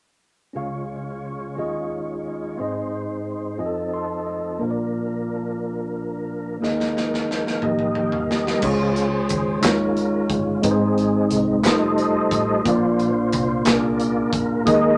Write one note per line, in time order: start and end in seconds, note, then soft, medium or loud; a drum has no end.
0.53 1.53 C#2 soft
0.53 1.53 C#3 soft
0.53 1.57 G#3 medium
0.53 1.55 C#4 soft
0.53 1.57 C#4 soft
0.53 1.56 F4 soft
0.53 1.57 G#4 soft
0.53 1.57 C#5 medium
0.53 1.57 F5 soft
1.56 2.54 D#2 soft
1.56 2.54 D#3 soft
1.56 1.64 G3 soft
1.56 2.58 C#4 soft
1.56 2.57 D#4 soft
1.56 2.58 F4 soft
1.56 2.59 G#4 soft
1.56 2.59 C#5 medium
1.56 2.59 D#5 soft
1.64 2.58 G#3 soft
2.57 3.56 G#2 medium
2.57 3.60 G#3 medium
2.57 3.56 C4 soft
2.57 3.57 C4 soft
2.57 3.58 D#4 soft
2.57 3.59 D#4 soft
2.57 3.58 G#4 soft
2.57 3.59 C5 medium
2.57 3.59 D#5 medium
3.57 4.56 F2 soft
3.57 4.60 F3 soft
3.57 4.59 C4 soft
3.57 4.60 C4 soft
3.57 4.60 D#4 soft
3.57 4.60 F4 soft
3.57 3.66 G#4 soft
3.57 4.26 D#5 medium
3.65 4.63 A4 medium
3.65 4.63 A4 soft
3.94 4.24 C6 soft
4.27 4.58 D#5 soft
4.59 6.59 A#1 soft
4.59 6.59 A#2 soft
4.59 6.58 F3 medium
4.59 6.57 A#3 soft
4.59 6.58 A#3 medium
4.59 6.58 D4 soft
4.59 6.59 F4 soft
4.59 6.57 A#4 medium
4.65 4.69 C5 soft
4.71 6.63 D5 medium
6.61 7.59 D#2 medium
6.61 7.59 D#3 medium
6.61 7.62 G#3 medium
6.61 7.61 A#3 medium
6.61 7.62 A#3 medium
6.61 7.61 D#4 medium
6.61 7.62 D#4 soft
6.61 7.63 G#4 soft
6.61 7.62 A#4 medium
6.61 7.64 D#5 medium
6.61 snare soft
6.80 snare soft
6.97 snare soft
7.14 snare soft
7.31 snare medium
7.47 snare soft
7.55 7.62 F5 medium
7.62 8.60 D#2 medium
7.62 8.60 D#3 medium
7.62 8.63 G3 soft
7.62 8.63 A#3 medium
7.62 8.64 A#3 soft
7.62 8.63 D#4 soft
7.62 8.64 D#4 soft
7.62 8.60 G4 soft
7.62 8.64 G4 soft
7.62 7.69 A4 soft
7.62 7.68 A#4 medium
7.62 8.27 D#5 medium
7.62 8.64 D#5 medium
7.62 mid tom medium
7.69 8.66 A#4 soft
7.79 mid tom medium
7.95 8.12 G5 soft
7.95 mid tom medium
8.11 8.27 F5 soft
8.11 floor tom medium
8.29 8.60 D#5 soft
8.29 snare medium
8.47 snare medium
8.60 9.26 C#2 loud
8.60 9.60 C#3 medium
8.60 9.47 G#3 medium
8.60 9.07 G#3 medium
8.60 9.48 C#4 medium
8.60 9.08 C#4 medium
8.60 9.49 F4 medium
8.60 9.08 F4 medium
8.60 9.60 G#4 medium
8.60 9.67 C5 loud
8.60 9.49 C#5 medium
8.60 kick loud
8.60 crash medium
8.96 closed hi-hat soft
9.29 9.62 D#2 medium
9.29 kick medium
9.29 closed hi-hat medium
9.61 10.31 D#2 medium
9.61 10.60 D#3 medium
9.61 10.48 G#3 medium
9.61 10.61 G#3 medium
9.61 10.61 C#4 soft
9.61 10.48 D#4 medium
9.61 10.49 F4 medium
9.61 10.49 C#5 medium
9.61 snare loud
9.61 clap medium
9.61 closed hi-hat medium
9.65 10.62 F4 medium
9.65 10.29 A#4 medium
9.97 closed hi-hat soft
10.30 10.61 G1 medium
10.30 kick medium
10.30 closed hi-hat medium
10.62 11.27 G#1 medium
10.62 11.60 G#2 medium
10.62 11.48 G#3 medium
10.62 11.60 G#3 medium
10.62 11.49 C4 medium
10.62 11.61 C4 medium
10.62 11.49 D#4 medium
10.62 11.61 D#4 medium
10.62 11.36 G#4 loud
10.62 10.71 B4 medium
10.62 kick loud
10.62 closed hi-hat medium
10.71 11.53 C5 medium
10.98 closed hi-hat soft
11.31 11.62 C2 medium
11.31 closed hi-hat medium
11.62 12.28 F1 loud
11.62 12.61 G3 medium
11.62 12.49 A3 medium
11.62 12.62 A3 soft
11.62 12.49 D#4 medium
11.62 12.62 D#4 medium
11.62 12.50 F4 medium
11.62 12.62 A4 medium
11.62 12.50 C5 medium
11.62 12.62 C5 medium
11.62 snare loud
11.62 clap medium
11.62 closed hi-hat medium
11.67 12.70 D#5 loud
11.98 closed hi-hat soft
12.31 12.63 A1 medium
12.31 kick loud
12.31 closed hi-hat medium
12.65 13.29 A#1 medium
12.65 13.63 A#2 medium
12.65 13.11 F3 medium
12.65 13.50 A#3 medium
12.65 13.11 A#3 medium
12.65 13.51 D4 medium
12.65 13.11 D4 medium
12.65 13.51 F4 medium
12.65 13.63 F4 medium
12.65 13.52 D5 medium
12.65 kick loud
12.65 closed hi-hat medium
12.69 13.64 C5 loud
12.99 closed hi-hat soft
13.32 13.64 C2 medium
13.32 kick medium
13.32 closed hi-hat medium
13.64 14.33 C2 medium
13.64 14.51 A#3 medium
13.64 13.73 C#4 soft
13.64 14.52 F4 medium
13.64 14.52 G#4 medium
13.64 14.64 A#4 medium
13.64 snare loud
13.64 clap loud
13.64 closed hi-hat medium
13.69 14.54 D4 medium
13.69 14.64 F4 medium
13.69 14.31 D5 medium
14.00 closed hi-hat medium
14.33 14.64 D2 medium
14.33 kick loud
14.33 closed hi-hat medium
14.65 14.98 D#2 loud
14.65 14.98 D#3 medium
14.65 14.98 G#3 medium
14.65 14.98 A#3 medium
14.65 14.98 D#4 medium
14.65 14.98 G#4 medium
14.65 14.98 A#4 medium
14.65 14.98 D#5 loud
14.65 14.98 D#5 medium
14.65 kick loud
14.65 closed hi-hat medium